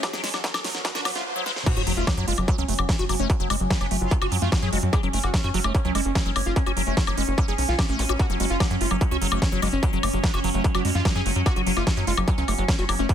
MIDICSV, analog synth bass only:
0, 0, Header, 1, 2, 480
1, 0, Start_track
1, 0, Key_signature, 3, "minor"
1, 0, Tempo, 408163
1, 38, Time_signature, 4, 2, 24, 8
1, 15457, End_track
2, 0, Start_track
2, 0, Title_t, "Analog synth bass"
2, 0, Program_c, 0, 38
2, 2077, Note_on_c, 0, 30, 87
2, 2163, Note_off_c, 0, 30, 0
2, 2197, Note_on_c, 0, 30, 101
2, 2283, Note_off_c, 0, 30, 0
2, 2317, Note_on_c, 0, 30, 96
2, 2403, Note_off_c, 0, 30, 0
2, 2557, Note_on_c, 0, 42, 86
2, 2643, Note_off_c, 0, 42, 0
2, 2677, Note_on_c, 0, 30, 100
2, 2763, Note_off_c, 0, 30, 0
2, 2797, Note_on_c, 0, 30, 97
2, 2883, Note_off_c, 0, 30, 0
2, 3037, Note_on_c, 0, 37, 88
2, 3123, Note_off_c, 0, 37, 0
2, 3157, Note_on_c, 0, 30, 100
2, 3243, Note_off_c, 0, 30, 0
2, 3277, Note_on_c, 0, 30, 91
2, 3363, Note_off_c, 0, 30, 0
2, 3517, Note_on_c, 0, 30, 89
2, 3603, Note_off_c, 0, 30, 0
2, 3637, Note_on_c, 0, 30, 100
2, 3723, Note_off_c, 0, 30, 0
2, 3757, Note_on_c, 0, 30, 92
2, 3843, Note_off_c, 0, 30, 0
2, 3997, Note_on_c, 0, 30, 85
2, 4083, Note_off_c, 0, 30, 0
2, 4117, Note_on_c, 0, 30, 99
2, 4203, Note_off_c, 0, 30, 0
2, 4237, Note_on_c, 0, 30, 96
2, 4323, Note_off_c, 0, 30, 0
2, 4477, Note_on_c, 0, 30, 87
2, 4563, Note_off_c, 0, 30, 0
2, 4597, Note_on_c, 0, 30, 100
2, 4683, Note_off_c, 0, 30, 0
2, 4717, Note_on_c, 0, 30, 97
2, 4803, Note_off_c, 0, 30, 0
2, 4957, Note_on_c, 0, 30, 85
2, 5043, Note_off_c, 0, 30, 0
2, 5077, Note_on_c, 0, 42, 99
2, 5163, Note_off_c, 0, 42, 0
2, 5197, Note_on_c, 0, 42, 92
2, 5283, Note_off_c, 0, 42, 0
2, 5437, Note_on_c, 0, 42, 89
2, 5523, Note_off_c, 0, 42, 0
2, 5557, Note_on_c, 0, 30, 98
2, 5643, Note_off_c, 0, 30, 0
2, 5676, Note_on_c, 0, 42, 95
2, 5763, Note_off_c, 0, 42, 0
2, 5917, Note_on_c, 0, 30, 89
2, 6003, Note_off_c, 0, 30, 0
2, 6037, Note_on_c, 0, 30, 100
2, 6123, Note_off_c, 0, 30, 0
2, 6156, Note_on_c, 0, 30, 97
2, 6243, Note_off_c, 0, 30, 0
2, 6396, Note_on_c, 0, 42, 89
2, 6483, Note_off_c, 0, 42, 0
2, 6517, Note_on_c, 0, 30, 101
2, 6603, Note_off_c, 0, 30, 0
2, 6637, Note_on_c, 0, 30, 96
2, 6723, Note_off_c, 0, 30, 0
2, 6877, Note_on_c, 0, 37, 87
2, 6963, Note_off_c, 0, 37, 0
2, 6997, Note_on_c, 0, 30, 100
2, 7083, Note_off_c, 0, 30, 0
2, 7117, Note_on_c, 0, 30, 92
2, 7203, Note_off_c, 0, 30, 0
2, 7357, Note_on_c, 0, 30, 88
2, 7443, Note_off_c, 0, 30, 0
2, 7477, Note_on_c, 0, 30, 101
2, 7563, Note_off_c, 0, 30, 0
2, 7597, Note_on_c, 0, 30, 94
2, 7683, Note_off_c, 0, 30, 0
2, 7837, Note_on_c, 0, 30, 86
2, 7923, Note_off_c, 0, 30, 0
2, 7957, Note_on_c, 0, 30, 99
2, 8043, Note_off_c, 0, 30, 0
2, 8077, Note_on_c, 0, 30, 92
2, 8163, Note_off_c, 0, 30, 0
2, 8317, Note_on_c, 0, 30, 88
2, 8403, Note_off_c, 0, 30, 0
2, 8437, Note_on_c, 0, 30, 100
2, 8523, Note_off_c, 0, 30, 0
2, 8557, Note_on_c, 0, 30, 93
2, 8643, Note_off_c, 0, 30, 0
2, 8797, Note_on_c, 0, 30, 88
2, 8883, Note_off_c, 0, 30, 0
2, 8917, Note_on_c, 0, 35, 100
2, 9003, Note_off_c, 0, 35, 0
2, 9037, Note_on_c, 0, 35, 93
2, 9123, Note_off_c, 0, 35, 0
2, 9277, Note_on_c, 0, 33, 88
2, 9363, Note_off_c, 0, 33, 0
2, 9397, Note_on_c, 0, 33, 100
2, 9483, Note_off_c, 0, 33, 0
2, 9517, Note_on_c, 0, 33, 90
2, 9603, Note_off_c, 0, 33, 0
2, 9757, Note_on_c, 0, 30, 85
2, 9843, Note_off_c, 0, 30, 0
2, 9877, Note_on_c, 0, 30, 101
2, 9963, Note_off_c, 0, 30, 0
2, 9997, Note_on_c, 0, 30, 94
2, 10083, Note_off_c, 0, 30, 0
2, 10237, Note_on_c, 0, 42, 88
2, 10323, Note_off_c, 0, 42, 0
2, 10357, Note_on_c, 0, 30, 100
2, 10443, Note_off_c, 0, 30, 0
2, 10477, Note_on_c, 0, 30, 96
2, 10563, Note_off_c, 0, 30, 0
2, 10717, Note_on_c, 0, 37, 90
2, 10803, Note_off_c, 0, 37, 0
2, 10837, Note_on_c, 0, 30, 102
2, 10923, Note_off_c, 0, 30, 0
2, 10957, Note_on_c, 0, 30, 93
2, 11043, Note_off_c, 0, 30, 0
2, 11197, Note_on_c, 0, 30, 87
2, 11283, Note_off_c, 0, 30, 0
2, 11317, Note_on_c, 0, 30, 101
2, 11403, Note_off_c, 0, 30, 0
2, 11437, Note_on_c, 0, 30, 91
2, 11523, Note_off_c, 0, 30, 0
2, 11677, Note_on_c, 0, 30, 86
2, 11763, Note_off_c, 0, 30, 0
2, 11798, Note_on_c, 0, 30, 103
2, 11883, Note_off_c, 0, 30, 0
2, 11917, Note_on_c, 0, 30, 93
2, 12003, Note_off_c, 0, 30, 0
2, 12157, Note_on_c, 0, 30, 87
2, 12243, Note_off_c, 0, 30, 0
2, 12277, Note_on_c, 0, 30, 101
2, 12363, Note_off_c, 0, 30, 0
2, 12397, Note_on_c, 0, 30, 97
2, 12483, Note_off_c, 0, 30, 0
2, 12637, Note_on_c, 0, 30, 87
2, 12723, Note_off_c, 0, 30, 0
2, 12757, Note_on_c, 0, 42, 101
2, 12843, Note_off_c, 0, 42, 0
2, 12877, Note_on_c, 0, 42, 91
2, 12963, Note_off_c, 0, 42, 0
2, 13117, Note_on_c, 0, 42, 86
2, 13203, Note_off_c, 0, 42, 0
2, 13237, Note_on_c, 0, 30, 101
2, 13323, Note_off_c, 0, 30, 0
2, 13357, Note_on_c, 0, 42, 94
2, 13443, Note_off_c, 0, 42, 0
2, 13597, Note_on_c, 0, 30, 86
2, 13683, Note_off_c, 0, 30, 0
2, 13717, Note_on_c, 0, 30, 101
2, 13803, Note_off_c, 0, 30, 0
2, 13837, Note_on_c, 0, 30, 97
2, 13923, Note_off_c, 0, 30, 0
2, 14077, Note_on_c, 0, 42, 85
2, 14163, Note_off_c, 0, 42, 0
2, 14197, Note_on_c, 0, 30, 101
2, 14283, Note_off_c, 0, 30, 0
2, 14317, Note_on_c, 0, 30, 95
2, 14403, Note_off_c, 0, 30, 0
2, 14557, Note_on_c, 0, 37, 88
2, 14643, Note_off_c, 0, 37, 0
2, 14676, Note_on_c, 0, 30, 101
2, 14763, Note_off_c, 0, 30, 0
2, 14797, Note_on_c, 0, 30, 91
2, 14883, Note_off_c, 0, 30, 0
2, 15037, Note_on_c, 0, 30, 91
2, 15123, Note_off_c, 0, 30, 0
2, 15157, Note_on_c, 0, 30, 100
2, 15243, Note_off_c, 0, 30, 0
2, 15277, Note_on_c, 0, 30, 91
2, 15363, Note_off_c, 0, 30, 0
2, 15457, End_track
0, 0, End_of_file